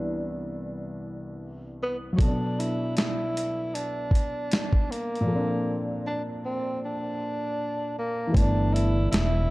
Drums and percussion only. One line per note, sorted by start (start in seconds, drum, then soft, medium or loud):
2.19 kick loud
2.19 closed hi-hat medium
2.60 closed hi-hat medium
2.97 snare medium
2.97 closed hi-hat medium
3.37 closed hi-hat medium
3.75 closed hi-hat medium
4.11 kick medium
4.15 closed hi-hat medium
4.51 snare loud
4.51 closed hi-hat medium
4.73 kick medium
4.92 closed hi-hat medium
5.15 closed hi-hat soft
8.34 kick loud
8.34 closed hi-hat medium
8.76 closed hi-hat medium
9.13 snare loud
9.13 closed hi-hat medium